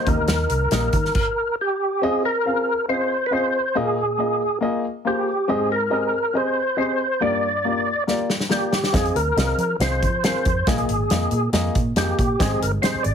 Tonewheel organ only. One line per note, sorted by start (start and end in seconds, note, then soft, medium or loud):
0.08 1.56 A#4 medium
1.61 2.05 G4 medium
2.03 2.23 G#4 medium
2.25 2.86 A#4 loud
2.89 3.27 C5 medium
3.26 3.33 B4 medium
3.33 3.77 C5 loud
3.77 4.59 G#4 medium
5.07 5.51 G4 medium
5.50 5.71 G#4 medium
5.72 6.38 A#4 medium
6.37 6.77 C5 medium
6.78 7.22 C5 loud
7.22 8.04 D5 medium
8.52 8.96 G4 medium
8.95 9.17 G#4 medium
9.16 9.76 A#4 loud
9.82 10.24 C5 loud
10.25 10.69 C5 medium
10.68 11.50 G#4 medium
11.98 12.42 G4 medium
12.41 12.63 G#4 medium
12.62 12.72 A#4 medium
12.82 13.05 C5 loud
13.03 13.14 D5 medium